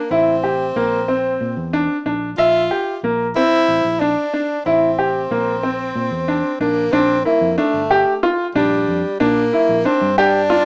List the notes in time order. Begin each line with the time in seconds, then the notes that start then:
Already playing: A#3
0.11 A1 C4 E4
0.43 G4
0.76 A#1 A#3
1.08 C4
1.41 A#2
1.57 E2
1.73 D4
2.06 A#1 D4
2.38 A#1 F4 E5
2.71 G4
3.03 A#1 A#3
3.36 C4 E4
3.68 A1
3.85 A#1
4.00 D4
4.33 D4
4.65 A1 C4 E4
4.99 G4
5.31 A#1 A#3
5.63 C4
5.95 A#2
6.12 E2
6.28 D4
6.60 A#1 A#3 D4
6.92 A#1 C4 D4
7.25 A#3 E4
7.41 F2
7.58 A3 D4
7.74 G1
7.91 G4
8.23 F4
8.55 A#1 G3 D4
8.88 F2
9.20 A#2 A#3 D4
9.53 E4
9.69 A#1
9.85 C4 D4
10.01 G2
10.18 D4 G4
10.50 F4